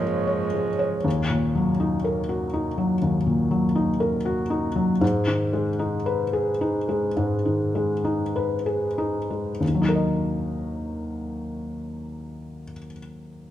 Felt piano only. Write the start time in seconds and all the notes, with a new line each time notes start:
Already playing: G#2 G#3 A#3 C#5
0.02 G#3
0.27 C#5
0.54 G#3
0.79 C#5
1.04 D#2
1.30 A#2
1.55 F#3
1.80 D#4
2.04 A#4
2.29 F#4
2.54 D#4
2.78 F#3
3.02 D#2
3.26 A#2
3.51 F#3
3.75 D#4
4.00 A#4
4.25 F#4
4.50 D#4
4.76 F#3
5.01 G#2
5.27 D#3
5.53 G#3
5.79 D#4
6.06 B4
6.33 G#4
6.61 D#4
6.89 G#3
7.17 G#2
7.45 D#3
7.75 G#3
8.04 D#4
8.36 B4
8.66 G#4
8.98 D#4
9.30 G#3
9.60 D#2
9.68 D#3
9.74 F#3
9.82 D#4
9.89 A#4
9.96 D#5